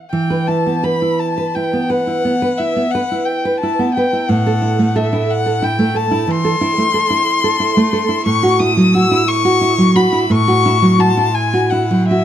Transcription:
0.11 2.20 E3 soft
0.11 0.49 G5 medium
0.30 0.59 B4 soft
0.47 0.76 E4 soft
0.47 0.86 A5 medium
0.66 0.95 B3 soft
0.83 1.12 B4 soft
0.83 1.21 B5 medium
1.02 1.55 E4 soft
1.20 1.57 A5 medium
1.38 1.65 B4 soft
1.55 1.83 E4 soft
1.55 1.91 G5 medium
1.73 2.00 B3 soft
1.89 2.17 B4 soft
1.89 2.59 F#5 medium
2.07 2.34 E4 soft
2.25 2.51 B3 soft
2.42 2.69 B4 soft
2.58 2.86 E4 soft
2.58 2.93 E5 medium
2.76 3.03 B3 soft
2.91 3.21 B4 soft
2.91 3.27 F#5 medium
3.12 3.62 E4 soft
3.25 3.59 G5 medium
3.45 3.72 B4 soft
3.60 3.89 E4 soft
3.60 3.94 A5 medium
3.79 4.06 B3 soft
3.94 4.23 B4 medium
3.94 4.31 G5 medium
4.13 4.29 E4 soft
4.29 6.24 A2 medium
4.29 4.98 F#5 medium
4.46 4.73 A4 medium
4.62 4.89 E4 soft
4.79 5.06 A3 soft
4.96 5.22 A4 medium
4.96 5.32 E5 medium
5.13 5.61 E4 soft
5.31 5.65 F#5 medium
5.46 5.72 A4 soft
5.62 5.89 E4 soft
5.62 5.98 G5 medium
5.79 6.05 A3 soft
5.94 6.21 A4 soft
5.94 6.32 A5 medium
6.11 6.38 E4 medium
6.28 6.54 E3 soft
6.28 8.25 C6 loud
6.45 6.71 A4 medium
6.61 6.88 E4 medium
6.78 7.04 A3 soft
6.94 7.21 A4 medium
7.10 7.59 E4 medium
7.44 7.70 A4 medium
7.60 7.86 E4 medium
7.77 8.03 A3 medium
7.93 8.19 A4 medium
8.09 8.25 E4 medium
8.26 10.26 A2 medium
8.26 8.61 C#6 loud
8.43 8.70 F#4 medium
8.59 8.87 E4 medium
8.59 8.95 D#6 loud
8.77 9.04 F#3 medium
8.94 9.21 F#4 medium
8.94 9.29 E6 loud
9.11 9.60 E4 medium
9.28 9.97 C#6 loud
9.45 9.71 F#4 medium
9.61 9.88 E4 medium
9.78 10.06 F#3 medium
9.96 10.23 F#4 medium
9.96 10.33 B5 loud
10.12 10.40 E4 medium
10.30 12.24 A2 medium
10.30 11.02 C#6 loud
10.48 10.75 F#4 medium
10.66 10.93 E4 medium
10.82 11.10 F#3 medium
10.99 11.27 F#4 medium
10.99 11.36 A5 loud
11.17 11.71 E4 medium
11.35 11.72 G#5 loud
11.54 11.83 F#4 medium
11.70 12.02 E4 soft
11.70 12.07 F#5 medium
11.91 12.21 F#3 medium
12.08 12.24 F#4 medium
12.08 12.24 E5 medium

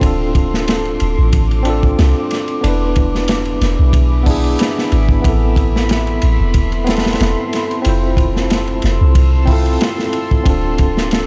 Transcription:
0.00 0.97 D1 loud
0.00 1.60 C4 medium
0.00 1.61 D4 medium
0.00 2.59 A4 medium
0.00 2.59 C6 medium
0.00 5.20 D6 medium
0.00 kick loud
0.00 ride medium
0.04 1.63 F4 medium
0.04 1.64 A4 medium
0.35 kick loud
0.35 ride medium
0.54 snare soft
0.68 snare loud
0.68 ride medium
0.85 ride soft
1.00 1.16 D1 medium
1.00 ride medium
1.18 1.95 A1 loud
1.33 kick medium
1.33 ride medium
1.51 ride soft
1.63 2.58 C4 medium
1.63 2.59 D4 medium
1.63 ride medium
1.67 2.60 F4 medium
1.67 2.62 A4 loud
1.83 kick medium
1.99 2.14 C2 medium
1.99 snare loud
1.99 ride medium
2.31 snare soft
2.31 ride medium
2.48 ride soft
2.61 3.58 E1 loud
2.61 4.22 B3 medium
2.61 4.23 D4 medium
2.61 5.22 G#4 medium
2.61 7.81 E5 medium
2.61 5.22 B5 medium
2.61 ride medium
2.65 4.24 E4 medium
2.65 4.25 B4 loud
2.96 kick medium
2.96 ride medium
3.15 snare soft
3.28 snare loud
3.28 ride medium
3.45 ride soft
3.61 3.76 E1 medium
3.61 snare soft
3.61 ride medium
3.79 4.56 B1 loud
3.93 kick loud
3.93 ride medium
4.23 5.19 B3 medium
4.23 5.20 D4 medium
4.23 kick loud
4.23 open hi-hat medium
4.28 5.21 E4 medium
4.28 5.23 G#4 medium
4.44 ride soft
4.59 snare loud
4.59 ride loud
4.78 snare soft
4.92 5.21 G#1 medium
4.92 ride medium
5.09 kick medium
5.22 6.19 A1 loud
5.22 6.82 B3 medium
5.22 6.83 C4 medium
5.22 11.27 A4 medium
5.22 7.83 B5 medium
5.22 7.83 C6 loud
5.22 kick loud
5.22 ride medium
5.26 6.85 E4 medium
5.26 6.86 A4 medium
5.56 kick loud
5.56 ride medium
5.76 snare medium
5.89 snare loud
5.89 ride medium
6.07 ride soft
6.22 6.38 A1 medium
6.22 ride medium
6.40 7.17 E1 loud
6.54 kick loud
6.54 ride medium
6.72 ride soft
6.84 7.80 B3 medium
6.84 7.81 C4 medium
6.84 ride medium
6.89 7.82 E4 medium
6.89 7.83 A4 medium
6.89 snare medium
6.96 snare medium
6.96 ride medium
7.05 snare medium
7.05 ride medium
7.13 snare medium
7.13 ride medium
7.20 7.35 E1 medium
7.20 snare loud
7.20 ride medium
7.53 snare soft
7.53 ride medium
7.71 ride soft
7.82 8.80 F1 loud
7.82 9.43 C4 medium
7.82 9.44 E4 medium
7.82 11.27 C6 medium
7.82 10.43 E6 loud
7.82 ride medium
7.87 9.45 F4 medium
7.87 9.46 C5 loud
8.17 kick medium
8.17 ride medium
8.36 snare soft
8.50 snare loud
8.50 ride medium
8.67 ride soft
8.82 8.99 F1 medium
8.82 snare medium
8.82 ride medium
9.01 9.78 C2 loud
9.15 kick loud
9.15 ride medium
9.45 10.41 C4 loud
9.45 10.42 E4 medium
9.45 kick medium
9.45 open hi-hat medium
9.50 10.43 F4 medium
9.50 10.44 A4 loud
9.66 ride soft
9.81 snare loud
9.81 ride medium
9.99 snare soft
10.13 ride medium
10.31 kick medium
10.43 11.27 D1 loud
10.43 11.27 C4 medium
10.43 11.27 D4 medium
10.43 11.27 D6 medium
10.43 kick loud
10.43 ride medium
10.48 11.27 F4 medium
10.48 11.27 A4 medium
10.78 kick medium
10.78 ride medium
10.97 snare medium
11.11 snare loud
11.11 ride medium

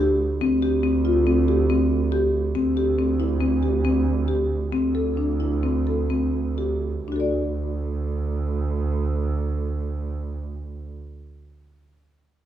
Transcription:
0.00 0.40 D2 medium
0.00 0.30 G4 medium
0.40 2.55 D2 medium
0.40 0.57 C4 medium
0.62 0.78 G4 medium
0.83 0.99 C4 medium
1.05 1.21 F4 medium
1.27 1.43 C4 medium
1.48 1.64 G4 medium
1.70 2.02 C4 medium
2.12 2.44 G4 medium
2.55 4.72 D2 medium
2.55 2.71 C4 medium
2.77 2.93 G4 medium
2.99 3.15 C4 medium
3.20 3.36 E4 medium
3.41 3.57 C4 medium
3.63 3.79 G4 medium
3.85 4.17 C4 medium
4.28 4.61 G4 medium
4.72 7.04 D2 medium
4.72 4.89 C4 medium
4.95 5.11 A4 medium
5.17 5.34 D4 soft
5.40 5.57 E4 soft
5.63 5.80 C4 medium
5.87 6.04 A4 soft
6.10 6.46 C4 medium
6.58 6.95 G4 medium
7.08 10.90 D2 medium
7.08 10.90 D4 soft
7.12 10.94 F#4 soft
7.12 10.98 A4 soft
7.20 11.02 D5 soft

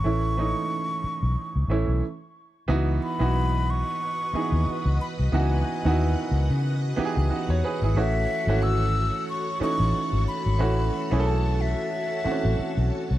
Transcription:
0.00 0.04 E3 medium
0.00 0.05 A3 medium
0.00 0.05 C#4 medium
0.00 2.03 F#4 medium
0.00 2.03 C#6 loud
0.04 0.52 A1 medium
0.04 0.33 E3 medium
0.04 0.34 A3 medium
0.04 0.34 C#4 medium
0.04 0.34 E4 medium
0.37 1.55 E3 medium
0.37 1.55 A3 medium
0.37 1.55 C#4 medium
0.37 1.55 D#4 medium
1.04 muted fingered electric bass stroke soft
1.23 1.35 B1 medium
1.56 1.68 C#2 medium
1.68 1.86 A1 medium
1.68 2.02 E3 medium
1.68 2.03 A3 medium
1.68 2.03 C#4 medium
1.68 2.03 E4 medium
1.88 2.00 B1 medium
2.67 2.98 C#2 medium
2.67 3.12 E3 medium
2.67 3.13 B3 medium
2.67 3.13 D#4 medium
2.67 13.18 F#4 medium
2.67 3.13 F#4 medium
2.67 7.91 B4 medium
2.67 7.91 D#5 medium
2.67 10.55 F#5 medium
3.03 3.72 B5 loud
3.19 3.82 B1 medium
3.19 4.20 E3 medium
3.19 4.20 B3 medium
3.19 4.20 D#4 medium
3.19 4.21 F#4 medium
3.70 5.00 C#6 loud
4.33 5.21 E3 medium
4.33 5.22 B3 medium
4.33 5.22 D#4 medium
4.33 5.22 G#4 medium
4.33 muted fingered electric bass stroke soft
4.52 4.64 D#2 medium
4.67 muted fingered electric bass stroke soft
4.85 4.97 C#2 medium
5.01 5.08 B5 medium
5.19 5.31 C2 medium
5.32 5.62 C#2 loud
5.32 5.76 E3 medium
5.32 5.77 B3 medium
5.32 5.77 D#4 medium
5.32 5.78 F#4 medium
5.32 6.60 G#5 loud
5.84 6.14 D#2 medium
5.84 5.89 D#3 medium
5.84 6.85 B3 medium
5.84 6.85 D#4 medium
5.84 6.85 F#4 medium
5.90 6.87 E4 medium
6.31 6.48 C#2 medium
6.50 6.93 C#3 medium
6.96 7.84 E3 medium
6.96 7.85 B3 medium
6.96 7.30 D#4 medium
6.96 7.05 G4 medium
6.96 muted fingered electric bass stroke soft
7.05 7.33 G#4 medium
7.17 7.29 C#2 medium
7.30 7.48 D#4 medium
7.30 7.48 F#4 medium
7.30 muted fingered electric bass stroke soft
7.49 7.61 E2 medium
7.49 7.62 C#5 medium
7.64 7.82 G#4 medium
7.64 7.81 B4 medium
7.82 7.94 G#1 medium
7.82 8.14 E4 medium
7.82 8.14 G#4 medium
7.94 8.25 A1 loud
7.94 8.40 E3 medium
7.94 8.41 A3 medium
7.94 8.41 C#4 medium
7.94 8.41 F#4 medium
7.94 13.18 A4 medium
7.94 13.18 C#5 medium
7.94 8.64 E5 loud
8.47 9.09 G#1 loud
8.47 9.48 E3 medium
8.47 9.48 A3 medium
8.47 9.49 C#4 medium
8.47 9.49 F#4 medium
8.63 9.28 E6 loud
9.29 9.59 C#6 loud
9.60 10.48 E3 medium
9.60 10.48 A3 medium
9.60 10.49 C#4 medium
9.60 10.49 D#4 medium
9.60 10.24 C#6 loud
9.60 muted fingered electric bass stroke soft
9.80 9.92 A1 medium
9.94 muted fingered electric bass stroke soft
10.13 10.25 G#1 medium
10.28 11.28 B5 loud
10.46 10.58 G#1 medium
10.58 10.89 A1 loud
10.58 11.03 E3 medium
10.58 11.04 A3 medium
10.58 11.04 C#4 medium
10.58 11.04 F#4 medium
10.58 13.18 A5 medium
11.11 11.73 B1 medium
11.11 12.11 E3 medium
11.11 12.12 A3 medium
11.11 12.12 C#4 medium
11.11 11.17 G#4 medium
11.19 12.15 A4 medium
11.27 11.62 A5 medium
11.61 12.91 E5 medium
12.24 13.12 E3 medium
12.24 13.12 A3 medium
12.24 12.32 C4 soft
12.24 13.13 F#4 medium
12.24 muted fingered electric bass stroke soft
12.32 13.16 C#4 medium
12.45 12.56 A1 medium
12.59 muted fingered electric bass stroke soft
12.77 12.89 B1 medium
13.11 13.18 C2 medium

